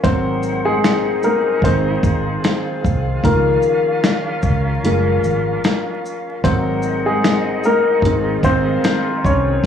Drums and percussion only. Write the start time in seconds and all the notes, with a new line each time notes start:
0.04 kick, closed hi-hat
0.43 shaker
0.84 finger snap, snare, closed hi-hat
1.23 shaker
1.62 kick, closed hi-hat
2.03 kick, shaker
2.44 finger snap, snare, closed hi-hat
2.85 kick, shaker
3.24 kick, closed hi-hat
3.63 shaker
4.04 finger snap, snare, closed hi-hat
4.43 kick, shaker
4.85 closed hi-hat
5.24 shaker
5.64 finger snap, snare, closed hi-hat
6.06 shaker
6.44 kick, closed hi-hat
6.83 shaker
7.24 finger snap, snare, closed hi-hat
7.64 shaker
8.02 kick, closed hi-hat
8.43 kick, shaker
8.84 finger snap, snare, closed hi-hat
9.25 kick, shaker